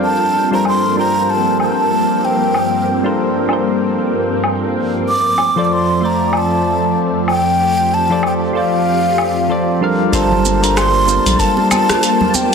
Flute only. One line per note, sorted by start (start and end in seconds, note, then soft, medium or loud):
0.04 0.50 A5 medium
0.54 0.65 A#5 medium
0.68 0.96 C6 medium
0.99 1.31 A#5 medium
1.30 1.61 A5 medium
1.61 2.26 A5 medium
2.25 3.19 G5 medium
5.09 5.65 D6 loud
5.65 5.74 D6 medium
5.73 6.07 C6 medium
6.05 6.39 A#5 medium
6.37 6.99 A5 medium
7.30 7.96 G5 loud
7.94 8.24 A5 medium
8.26 8.33 G5 medium
8.56 9.78 F5 medium
10.15 10.65 A5 loud
10.63 10.78 A#5 loud
10.77 11.41 C6 loud
11.39 11.70 A5 loud
11.71 12.37 A5 loud
12.35 12.55 G5 medium